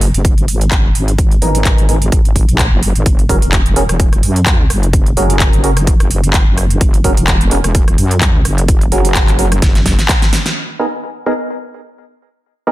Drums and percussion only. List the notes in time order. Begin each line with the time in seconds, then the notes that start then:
0.01 open hi-hat
0.14 closed hi-hat
0.25 kick, closed hi-hat
0.38 closed hi-hat
0.48 open hi-hat
0.61 closed hi-hat
0.71 kick, clap, closed hi-hat
0.95 open hi-hat
1.08 closed hi-hat
1.18 kick, closed hi-hat
1.31 closed hi-hat
1.42 open hi-hat
1.55 closed hi-hat
1.65 kick, clap, closed hi-hat
1.78 closed hi-hat
1.89 open hi-hat
2.02 closed hi-hat
2.12 kick, closed hi-hat
2.25 closed hi-hat
2.36 kick, open hi-hat
2.49 closed hi-hat
2.59 kick, clap, closed hi-hat
2.83 open hi-hat
2.95 closed hi-hat
3.06 kick, closed hi-hat
3.19 closed hi-hat
3.29 kick, open hi-hat
3.42 closed hi-hat
3.52 kick, clap, closed hi-hat
3.66 closed hi-hat
3.76 open hi-hat
3.89 cross-stick, closed hi-hat
4.00 kick, closed hi-hat
4.13 cross-stick, closed hi-hat
4.23 open hi-hat
4.36 closed hi-hat
4.46 kick, clap, closed hi-hat
4.70 cross-stick, open hi-hat
4.83 closed hi-hat
4.93 kick, closed hi-hat
5.06 closed hi-hat
5.17 open hi-hat
5.30 closed hi-hat
5.40 kick, clap, closed hi-hat
5.53 closed hi-hat
5.64 open hi-hat
5.77 cross-stick, closed hi-hat
5.87 kick, closed hi-hat
6.00 cross-stick, closed hi-hat
6.11 open hi-hat
6.24 closed hi-hat
6.34 kick, clap, closed hi-hat
6.58 cross-stick, open hi-hat
6.70 closed hi-hat
6.81 kick, closed hi-hat
6.94 closed hi-hat
7.04 kick, open hi-hat
7.17 closed hi-hat
7.27 kick, clap, closed hi-hat
7.41 closed hi-hat
7.51 open hi-hat
7.64 cross-stick, closed hi-hat
7.75 kick, closed hi-hat
7.88 cross-stick, closed hi-hat
7.98 open hi-hat
8.11 closed hi-hat
8.21 kick, clap, closed hi-hat
8.45 cross-stick, open hi-hat
8.58 closed hi-hat
8.68 kick, closed hi-hat
8.81 closed hi-hat
8.92 open hi-hat
9.05 closed hi-hat
9.15 kick, clap, closed hi-hat
9.28 clap, closed hi-hat
9.39 open hi-hat
9.52 cross-stick, closed hi-hat
9.62 kick, snare, closed hi-hat
9.75 snare, closed hi-hat
9.86 kick, snare, open hi-hat
9.99 snare, closed hi-hat
10.09 kick, snare, clap, closed hi-hat
10.22 snare, closed hi-hat
10.33 snare, open hi-hat
10.46 snare, closed hi-hat